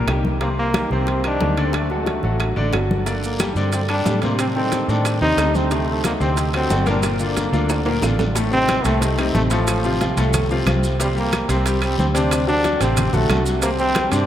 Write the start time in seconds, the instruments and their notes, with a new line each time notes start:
Already playing: trombone G3
0.07 fingered electric bass C2, grand piano D#3 D#4 G4, high bongo, low bongo, high conga, high timbale, low timbale, claves
0.25 high conga
0.41 grand piano C3 C4 C5, trombone A#3, high bongo, high conga, high timbale
0.58 trombone A#3, high conga
0.74 grand piano D#3 D#4 G4, high bongo, high conga, high timbale, low timbale, claves
0.90 fingered electric bass C2, grand piano C3 C4 C5, trombone C4, high bongo, high conga
1.07 high bongo, high conga, high timbale
1.24 grand piano D#3 D#4 G4, trombone D4, high bongo, high conga, high timbale, claves
1.41 fingered electric bass D2, grand piano D#3 D#4 G4, high bongo, low bongo, high conga, low timbale
1.57 grand piano D3 D4 D5, high bongo, high timbale
1.65 trombone C4
1.73 trombone A3, high bongo, high conga, high timbale, claves
1.90 grand piano F#3 F#4 A4, trombone A3, high bongo, high conga
2.06 high bongo, high conga, high timbale, low timbale
2.23 fingered electric bass A1, grand piano F#3 F#4 A4, high bongo, high conga
2.40 high bongo, high conga, high timbale, claves
2.56 fingered electric bass A1, grand piano D3 D4 D5, high bongo, high conga
2.73 fingered electric bass G1, grand piano F#3 F#4 A4, high bongo, low bongo, high conga, high timbale, low timbale, claves
2.91 high conga
3.06 grand piano D3 D4 D5, trombone A#3, high bongo, high conga, high timbale, long guiro, maracas
3.24 trombone A#3, high conga, maracas
3.39 grand piano G3 G4 A4, high bongo, high conga, high timbale, low timbale, short guiro, claves, maracas
3.53 fingered electric bass G2, grand piano D3 D4 D5, trombone C4 D4, high bongo, high conga, short guiro, maracas
3.72 trombone C4, high bongo, high conga, high timbale, long guiro, maracas
3.89 grand piano G3 G4 A4, trombone D4, high bongo, high conga, high timbale, claves
4.05 fingered electric bass A2, grand piano G3 G4 A4, high bongo, low bongo, high conga, low timbale, short guiro, maracas
4.22 grand piano C3 C4 C5, trombone A#3, high bongo, high conga, high timbale, short guiro, maracas
4.39 trombone C4, high bongo, high conga, high timbale, long guiro, claves, maracas
4.56 grand piano D#3 D#4 A4, trombone C4, high bongo, high conga
4.72 high bongo, high conga, high timbale, low timbale, short guiro, maracas
4.88 fingered electric bass A2, grand piano D#3 C4 A4, trombone D4, high bongo, high conga, short guiro, maracas
5.05 high bongo, high conga, high timbale, long guiro, claves, maracas
5.21 fingered electric bass D#2, grand piano C3 C4 C5, trombone D#4, high bongo, high conga
5.37 fingered electric bass D2, grand piano C3 D#4 A4, high bongo, low bongo, high conga, high timbale, low timbale, short guiro, claves, maracas
5.55 trombone C4, high conga, short guiro, maracas
5.71 grand piano C3 C4 C5, trombone A3, high bongo, high conga, high timbale, long guiro, maracas
5.89 trombone A3, high conga
6.04 grand piano F#3 F#4 A4, trombone A#3, high bongo, high conga, high timbale, low timbale, short guiro, claves, maracas
6.20 fingered electric bass D2, grand piano C3 C4 C5, trombone C4, high bongo, high conga, short guiro, maracas
6.37 high bongo, high conga, high timbale, long guiro, maracas
6.54 grand piano F#3 F#4 A4, trombone C4, high bongo, high conga, high timbale, claves
6.70 fingered electric bass G1, grand piano F#3 F#4 A4, high bongo, low bongo, high conga, low timbale, short guiro, maracas
6.86 grand piano A#2 A#3 A#4, trombone D4, high bongo, high conga, high timbale, short guiro, maracas
7.03 trombone A#3, high bongo, high conga, high timbale, long guiro, claves, maracas
7.19 grand piano D3 D4 F4, high bongo, high conga, maracas
7.37 high bongo, high conga, high timbale, low timbale, short guiro, maracas
7.52 fingered electric bass D2, grand piano D3 D4 F4, high bongo, high conga, short guiro, maracas
7.69 high bongo, high conga, high timbale, long guiro, claves, maracas
7.86 grand piano A#2 A#3 A#4, high bongo, high conga, high timbale
8.02 fingered electric bass A1, grand piano D3 D4 F4, high bongo, low bongo, high conga, low timbale, short guiro, claves, maracas
8.19 high conga, low timbale, short guiro, maracas
8.35 grand piano A2 A3 A4, high bongo, high conga, high timbale, long guiro, maracas
8.51 grand piano C3 C4 D#4, trombone C4, high conga, maracas
8.69 high bongo, high conga, high timbale, short guiro, claves, maracas
8.85 fingered electric bass C2, grand piano A2 A3 A4, trombone A3, high bongo, high conga, high timbale, short guiro, maracas
9.01 grand piano C3 C4 D#4, high bongo, high conga, high timbale, long guiro, maracas
9.18 grand piano C3 C4 D#4, high bongo, high conga, high timbale, claves, maracas
9.34 fingered electric bass A1, trombone A3, high bongo, low bongo, high conga, short guiro, maracas
9.50 grand piano A2 A3 A4, trombone F3, high bongo, high conga, high timbale, short guiro, maracas
9.67 high bongo, high timbale, long guiro, claves, maracas
9.84 grand piano C3 C4 F4, high conga, maracas
10.01 grand piano C3 C4 F4, high bongo, high conga, high timbale, short guiro, maracas
10.17 fingered electric bass C2, grand piano A2 A3 A4, high bongo, high conga, high timbale, short guiro, maracas
10.33 high bongo, high conga, low conga, high timbale, long guiro, claves, maracas
10.50 grand piano C3 C4 F4, high bongo, high conga, maracas
10.66 fingered electric bass C2, grand piano C3 C4 F4, high bongo, low bongo, high conga, high timbale, short guiro, claves, maracas
10.84 high bongo, short guiro, maracas
10.99 grand piano C3 C4 C5, trombone G3, high bongo, high conga, high timbale, long guiro, maracas
11.16 grand piano G3 G4, trombone A#3, high conga, maracas
11.33 high bongo, high conga, high timbale, short guiro, claves, maracas
11.49 fingered electric bass C2, grand piano C3 C4 C5, trombone C4, high bongo, high conga, high timbale, short guiro, maracas
11.65 grand piano G3 G4, high bongo, high conga, high timbale, long guiro, maracas
11.82 grand piano G3 G4, trombone C4, high bongo, high conga, high timbale, claves, maracas
11.99 fingered electric bass D2, trombone C4, high bongo, low bongo, high conga, short guiro, maracas
12.14 grand piano C3 C4 C5, trombone D4, high bongo, high conga, high timbale, short guiro, maracas
12.31 high bongo, high conga, high timbale, long guiro, claves, maracas
12.47 grand piano F#3 F#4 A4, trombone D4, high conga, maracas
12.63 grand piano F#3 F#4 A4, high bongo, high conga, high timbale, short guiro, maracas
12.80 fingered electric bass A1, grand piano C3 C4 C5, trombone C4, high bongo, high conga, high timbale, short guiro, maracas
12.97 high bongo, high conga, low conga, high timbale, long guiro, claves, maracas
13.13 fingered electric bass A#1, grand piano F#3 F#4 A4, trombone A3, high bongo, high conga, low conga, maracas
13.29 fingered electric bass C2, grand piano F#3 F#4 A4, high bongo, low bongo, high conga, high timbale, low timbale, short guiro, claves, maracas
13.46 high bongo, short guiro, maracas
13.62 grand piano C3 C4 C5, trombone A#3, high bongo, high conga, high timbale, long guiro, maracas
13.79 grand piano G3 G4, trombone C4, high conga, maracas
13.95 high bongo, high conga, high timbale, short guiro, claves, maracas
14.12 fingered electric bass G2, grand piano C3 C4 C5, trombone D4, high bongo, high conga, high timbale, short guiro, maracas